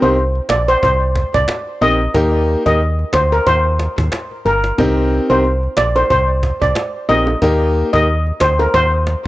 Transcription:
0.02 C2 C4 D#4 G4 A#4 C5
0.17 cajon slap
0.35 cajon slap
0.49 A#1 D5, cajon slap
0.68 C5
0.83 C2 C5, cajon bass
1.15 cajon bass, cajon slap
1.34 C2 D5, cajon bass
1.48 cajon slap
1.81 A#1 C4 D#4 G4 A#4 D#5, cajon slap
2.14 D#2 A#3 D#4 G4 A#4, cajon bass
2.33 cajon slap
2.48 cajon slap
2.66 D#2 A#3 D#4 G4 A#4 D#5, cajon bass
2.80 cajon slap
2.99 cajon slap
3.13 D2 C5, cajon bass, cajon slap
3.32 A#4
3.47 D#2 C5, cajon bass
3.65 cajon slap
3.79 cajon slap
3.98 D#2, cajon bass, cajon slap
4.12 cajon slap
4.31 cajon slap
4.45 G1 A#4, cajon slap
4.64 cajon slap
4.78 C2 C4 D#4 G4 A#4, cajon bass
4.97 cajon slap
5.12 cajon slap
5.30 C2 C4 D#4 G4 A#4 C5
5.44 cajon slap
5.63 cajon slap
5.77 A#1 D5, cajon slap
5.96 C5, high bongo
6.10 C2 C5, cajon bass
6.43 cajon bass, cajon slap
6.62 C2 D5, cajon bass
6.75 cajon slap
7.09 A#1 C4 D#4 G4 A#4 D#5, low bongo
7.27 high bongo
7.42 D#2 A#3 D#4 G4 A#4, cajon bass
7.61 cajon slap
7.75 cajon slap
7.93 D#2 A#3 D#4 G4 A#4 D#5, cajon bass
8.27 cajon slap
8.40 D2 C5, cajon bass, cajon slap
8.59 A#4, high bongo
8.74 D#2 C5, cajon bass
9.07 cajon slap

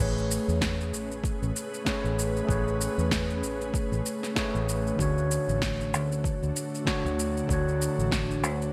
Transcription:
Already playing: A3 G#4
0.00 A1 A3 C#4 G#4 B4 C#5, shaker
0.18 shaker
0.31 shaker
0.48 E2, shaker
0.61 kick, snare, shaker
0.81 shaker
0.93 A1, shaker
1.12 shaker
1.24 kick, shaker
1.42 A1, shaker
1.56 shaker
1.74 shaker
1.85 A3 G#4 B4 C#5, kick, snare, shaker
2.04 A1, shaker
2.19 shaker
2.37 shaker
2.45 A1 A3 G#4, kick
2.49 B4 C#5, shaker
2.68 shaker
2.81 shaker
2.98 E2, shaker
3.11 kick, snare, shaker
3.30 shaker
3.43 A1, shaker
3.61 shaker
3.74 kick, shaker
3.92 A1, shaker
4.06 shaker
4.23 snare, shaker
4.35 A3 G#4 B4 C#5, kick, snare, shaker
4.55 A1, shaker
4.69 shaker
4.87 shaker
4.96 D2 D3 D4 F#4, kick
5.00 F#4 C#5, shaker
5.18 shaker
5.31 shaker
5.48 A1, shaker
5.62 kick, snare, shaker
5.81 shaker
5.94 D2, shaker
6.12 shaker
6.24 kick, shaker
6.42 D2, shaker
6.56 shaker
6.75 shaker
6.85 D3 D4 F#4 C#5, kick, snare, shaker
7.05 D2, shaker
7.19 shaker
7.37 shaker
7.47 D2 D3 D4, kick, shaker
7.51 F#4 C#5
7.68 shaker
7.82 shaker
7.98 A1, shaker
8.11 kick, snare, shaker
8.31 shaker
8.43 D2, shaker
8.62 shaker

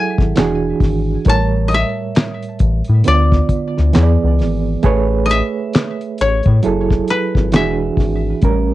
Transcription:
Already playing: F#3 E4 G#4 A4 E5 F#5 G#5
0.18 G#1, kick, snare
0.36 E1 E3 D4 F#4 G#4, snare, clap, closed hi-hat
0.80 G#1, kick, snare, open hi-hat
1.25 A1 A2 G3 A#4 C#5, kick, closed hi-hat
1.29 A5
1.68 D#5, closed hi-hat
1.74 E5
2.15 snare, clap, closed hi-hat
2.43 closed hi-hat
2.59 A1, kick, closed hi-hat
2.85 closed hi-hat
2.89 A2
3.04 D2 D3 B3 F4 C#5 D5, closed hi-hat
3.14 D5
3.32 kick, snare
3.49 kick, closed hi-hat
3.78 D2, snare
3.93 E2 E3 B3 G#4 C#5, snare, clap, closed hi-hat
4.03 D5
4.24 C#2
4.39 G#1, snare, open hi-hat
4.83 A1 A3 G#4 B4 C#5, kick, closed hi-hat
5.26 D#5, closed hi-hat
5.31 E5
5.73 snare, clap, closed hi-hat
6.01 closed hi-hat
6.18 A1 C#5, closed hi-hat
6.43 A2, kick, closed hi-hat
6.63 F#1 F#3 E4 G#4 A4, closed hi-hat
6.90 kick, snare
7.08 B4, closed hi-hat
7.35 G#1, kick, snare
7.52 E1 E3 D4 F#4 G#4 E5, snare, clap, closed hi-hat
7.97 G#1, kick, snare, open hi-hat
8.41 A1 A2 G3 C#4 A#4, kick, closed hi-hat

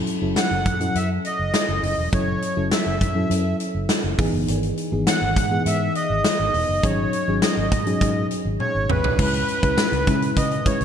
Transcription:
Already playing: F#3 C#4 E4 A4
0.07 closed hi-hat
0.21 F#1 F#3 C#4 E4 A4
0.36 F#5, snare, closed hi-hat
0.51 F#1
0.66 F#2, kick, closed hi-hat
0.80 F#3 C#4 E4 A4, closed hi-hat
0.95 F#2 E5, closed hi-hat
1.25 D#5, closed hi-hat
1.39 F#1
1.54 snare, closed hi-hat
1.69 F#1
1.83 F#1, open hi-hat
1.98 E1
2.12 F#1 F#3 C#4 E4 A4 C#5, kick, closed hi-hat
2.42 closed hi-hat
2.56 F#1 F#3 C#4 E4 A4
2.71 E5, snare, closed hi-hat
2.86 F#1
3.01 F#2, kick, closed hi-hat
3.15 F#3 C#4 E4 A4
3.30 F#2 F#3 C#4 E4 A4, closed hi-hat
3.60 closed hi-hat
3.74 F#1
3.89 snare, closed hi-hat
4.04 F#1
4.18 G#1 E3 B3 D#4 G#4, kick, open hi-hat
4.33 F#1
4.48 G#1, closed hi-hat
4.63 closed hi-hat
4.77 closed hi-hat
4.92 G#1 E3 B3 D#4 G#4
5.07 F#5, snare, closed hi-hat
5.21 G#1
5.36 G#2, kick, closed hi-hat
5.50 E3 B3 D#4 G#4
5.66 G#2 E5, closed hi-hat
5.95 D#5, closed hi-hat
6.10 G#1
6.24 snare, closed hi-hat
6.39 G#1
6.54 E1, open hi-hat
6.69 F#1
6.83 G#1 F#3 C#4 D#4 G#4 C#5, kick, closed hi-hat
7.13 closed hi-hat
7.27 G#1 F#3 C#4 D#4 G#4
7.42 D#5, snare, closed hi-hat
7.57 G#1
7.72 G#2, kick, closed hi-hat
7.86 F#3 C#4 D#4 G#4, closed hi-hat
8.01 G#2 F#3 C#4 D#4 G#4, kick, closed hi-hat
8.31 closed hi-hat
8.45 G#1
8.60 C#5, high tom
8.75 G#1
8.89 A1 B4, mid tom
9.04 B1, floor tom
9.18 C#2 G#3 C#4 E4 B4, kick, crash
9.34 closed hi-hat
9.48 closed hi-hat
9.63 C#2 G#3 C#4 E4 B4, kick, closed hi-hat
9.78 snare, tambourine
9.92 C#2, closed hi-hat
10.07 C#3 G#3 C#4 E4 B4, kick, closed hi-hat
10.22 closed hi-hat
10.37 C#3 D#5, kick, closed hi-hat
10.51 closed hi-hat
10.65 G#3 C#4 E4 B4 C#5, kick, closed hi-hat
10.81 C#2, closed hi-hat

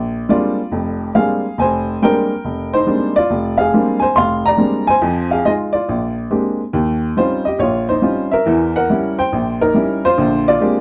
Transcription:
Already playing: A#1
0.29 G3 G#3 A#3 C4 D4 F4 D5
0.72 F1 F2
1.15 G3 G#3 A#3 C4 D4 G#4 F5
1.58 F1 C5 G#5
2.02 G3 G#3 A#3 C4 D4 A#4 G5
2.45 F1
2.74 D#4 C5
2.87 G3 G#3 A#3 C4 D4
3.16 F4 D5
3.30 F1
3.58 G#4 F5
3.73 G3 G#3 A#3 C4 D4
4.00 C5 G#5
4.16 F1 F5 C6
4.46 D5 A#5
4.57 G3 G#3 A#3 C4 D4
4.87 C5 G#5
5.02 F2 F3
5.31 G#4 F5
5.45 G#3 D#4 F4 G#4 D#5
5.73 F4 D5
5.89 A#1
6.31 G#3 A#3 C4 D4 G4
6.73 D#2
7.17 G3 C4 C#4 D#4 F4 C5
7.45 G4 D#5
7.59 A#1 F4 C#5
7.89 D#4 C5
8.02 G3 C4 C#4 D#4 F4
8.31 A#4 E5
8.46 E2 E3
8.76 A#4 F#5
8.90 G3 C#4 E4
9.18 C5 G5
9.32 A#1
9.61 D#4 A#4
9.74 G3 C#4 E4
10.05 F4 C5
10.18 A#1 D3
10.48 F4 D5
10.61 G#3 A#3 C4 D4 G4

